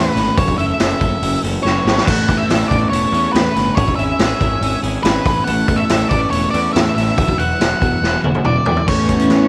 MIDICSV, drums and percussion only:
0, 0, Header, 1, 2, 480
1, 0, Start_track
1, 0, Key_signature, 3, "major"
1, 0, Tempo, 425230
1, 420, Time_signature, 4, 2, 24, 8
1, 10703, End_track
2, 0, Start_track
2, 0, Title_t, "Drums"
2, 188, Note_on_c, 9, 46, 67
2, 196, Note_on_c, 9, 38, 32
2, 301, Note_off_c, 9, 46, 0
2, 309, Note_off_c, 9, 38, 0
2, 423, Note_on_c, 9, 46, 92
2, 424, Note_on_c, 9, 36, 117
2, 536, Note_off_c, 9, 46, 0
2, 537, Note_off_c, 9, 36, 0
2, 544, Note_on_c, 9, 36, 98
2, 657, Note_off_c, 9, 36, 0
2, 666, Note_on_c, 9, 46, 58
2, 779, Note_off_c, 9, 46, 0
2, 899, Note_on_c, 9, 46, 95
2, 907, Note_on_c, 9, 38, 116
2, 1012, Note_off_c, 9, 46, 0
2, 1020, Note_off_c, 9, 38, 0
2, 1137, Note_on_c, 9, 46, 61
2, 1141, Note_on_c, 9, 36, 82
2, 1250, Note_off_c, 9, 46, 0
2, 1254, Note_off_c, 9, 36, 0
2, 1383, Note_on_c, 9, 46, 96
2, 1496, Note_off_c, 9, 46, 0
2, 1627, Note_on_c, 9, 46, 66
2, 1740, Note_off_c, 9, 46, 0
2, 1873, Note_on_c, 9, 38, 63
2, 1985, Note_off_c, 9, 38, 0
2, 2113, Note_on_c, 9, 38, 104
2, 2225, Note_off_c, 9, 38, 0
2, 2233, Note_on_c, 9, 38, 98
2, 2342, Note_on_c, 9, 36, 109
2, 2346, Note_off_c, 9, 38, 0
2, 2346, Note_on_c, 9, 49, 109
2, 2346, Note_on_c, 9, 55, 84
2, 2455, Note_off_c, 9, 36, 0
2, 2459, Note_off_c, 9, 49, 0
2, 2459, Note_off_c, 9, 55, 0
2, 2582, Note_on_c, 9, 36, 91
2, 2589, Note_on_c, 9, 46, 60
2, 2695, Note_off_c, 9, 36, 0
2, 2702, Note_off_c, 9, 46, 0
2, 2823, Note_on_c, 9, 46, 94
2, 2831, Note_on_c, 9, 38, 127
2, 2936, Note_off_c, 9, 46, 0
2, 2943, Note_off_c, 9, 38, 0
2, 3060, Note_on_c, 9, 36, 75
2, 3068, Note_on_c, 9, 46, 54
2, 3173, Note_off_c, 9, 36, 0
2, 3181, Note_off_c, 9, 46, 0
2, 3307, Note_on_c, 9, 46, 87
2, 3420, Note_off_c, 9, 46, 0
2, 3544, Note_on_c, 9, 46, 59
2, 3657, Note_off_c, 9, 46, 0
2, 3784, Note_on_c, 9, 46, 84
2, 3792, Note_on_c, 9, 38, 112
2, 3897, Note_off_c, 9, 46, 0
2, 3905, Note_off_c, 9, 38, 0
2, 4022, Note_on_c, 9, 46, 65
2, 4030, Note_on_c, 9, 38, 34
2, 4135, Note_off_c, 9, 46, 0
2, 4143, Note_off_c, 9, 38, 0
2, 4258, Note_on_c, 9, 36, 126
2, 4262, Note_on_c, 9, 46, 91
2, 4371, Note_off_c, 9, 36, 0
2, 4375, Note_off_c, 9, 46, 0
2, 4379, Note_on_c, 9, 36, 92
2, 4492, Note_off_c, 9, 36, 0
2, 4501, Note_on_c, 9, 46, 55
2, 4614, Note_off_c, 9, 46, 0
2, 4731, Note_on_c, 9, 46, 86
2, 4739, Note_on_c, 9, 38, 121
2, 4844, Note_off_c, 9, 46, 0
2, 4852, Note_off_c, 9, 38, 0
2, 4975, Note_on_c, 9, 36, 78
2, 4978, Note_on_c, 9, 46, 57
2, 5088, Note_off_c, 9, 36, 0
2, 5091, Note_off_c, 9, 46, 0
2, 5218, Note_on_c, 9, 46, 85
2, 5331, Note_off_c, 9, 46, 0
2, 5455, Note_on_c, 9, 46, 67
2, 5568, Note_off_c, 9, 46, 0
2, 5698, Note_on_c, 9, 46, 89
2, 5706, Note_on_c, 9, 38, 120
2, 5811, Note_off_c, 9, 46, 0
2, 5819, Note_off_c, 9, 38, 0
2, 5934, Note_on_c, 9, 36, 116
2, 5934, Note_on_c, 9, 46, 76
2, 5942, Note_on_c, 9, 38, 34
2, 6046, Note_off_c, 9, 36, 0
2, 6047, Note_off_c, 9, 46, 0
2, 6055, Note_off_c, 9, 38, 0
2, 6176, Note_on_c, 9, 46, 90
2, 6289, Note_off_c, 9, 46, 0
2, 6413, Note_on_c, 9, 46, 66
2, 6414, Note_on_c, 9, 36, 80
2, 6526, Note_off_c, 9, 46, 0
2, 6527, Note_off_c, 9, 36, 0
2, 6652, Note_on_c, 9, 46, 101
2, 6660, Note_on_c, 9, 38, 127
2, 6765, Note_off_c, 9, 46, 0
2, 6773, Note_off_c, 9, 38, 0
2, 6891, Note_on_c, 9, 46, 62
2, 6897, Note_on_c, 9, 36, 87
2, 7004, Note_off_c, 9, 46, 0
2, 7010, Note_off_c, 9, 36, 0
2, 7138, Note_on_c, 9, 46, 85
2, 7251, Note_off_c, 9, 46, 0
2, 7381, Note_on_c, 9, 46, 63
2, 7494, Note_off_c, 9, 46, 0
2, 7627, Note_on_c, 9, 46, 89
2, 7635, Note_on_c, 9, 38, 118
2, 7740, Note_off_c, 9, 46, 0
2, 7748, Note_off_c, 9, 38, 0
2, 7876, Note_on_c, 9, 46, 67
2, 7884, Note_on_c, 9, 38, 36
2, 7989, Note_off_c, 9, 46, 0
2, 7996, Note_off_c, 9, 38, 0
2, 8103, Note_on_c, 9, 46, 85
2, 8104, Note_on_c, 9, 36, 126
2, 8216, Note_off_c, 9, 46, 0
2, 8217, Note_off_c, 9, 36, 0
2, 8223, Note_on_c, 9, 36, 90
2, 8336, Note_off_c, 9, 36, 0
2, 8345, Note_on_c, 9, 46, 54
2, 8458, Note_off_c, 9, 46, 0
2, 8586, Note_on_c, 9, 46, 87
2, 8594, Note_on_c, 9, 38, 120
2, 8699, Note_off_c, 9, 46, 0
2, 8707, Note_off_c, 9, 38, 0
2, 8825, Note_on_c, 9, 36, 80
2, 8829, Note_on_c, 9, 46, 53
2, 8938, Note_off_c, 9, 36, 0
2, 8942, Note_off_c, 9, 46, 0
2, 9073, Note_on_c, 9, 38, 72
2, 9186, Note_off_c, 9, 38, 0
2, 9301, Note_on_c, 9, 48, 73
2, 9414, Note_off_c, 9, 48, 0
2, 9423, Note_on_c, 9, 48, 81
2, 9534, Note_on_c, 9, 47, 93
2, 9536, Note_off_c, 9, 48, 0
2, 9647, Note_off_c, 9, 47, 0
2, 9773, Note_on_c, 9, 43, 108
2, 9886, Note_off_c, 9, 43, 0
2, 9896, Note_on_c, 9, 43, 90
2, 10009, Note_off_c, 9, 43, 0
2, 10020, Note_on_c, 9, 49, 110
2, 10023, Note_on_c, 9, 36, 101
2, 10133, Note_off_c, 9, 49, 0
2, 10136, Note_off_c, 9, 36, 0
2, 10255, Note_on_c, 9, 42, 58
2, 10262, Note_on_c, 9, 36, 71
2, 10368, Note_off_c, 9, 42, 0
2, 10375, Note_off_c, 9, 36, 0
2, 10378, Note_on_c, 9, 42, 73
2, 10491, Note_off_c, 9, 42, 0
2, 10494, Note_on_c, 9, 42, 73
2, 10502, Note_on_c, 9, 38, 111
2, 10607, Note_off_c, 9, 42, 0
2, 10615, Note_off_c, 9, 38, 0
2, 10703, End_track
0, 0, End_of_file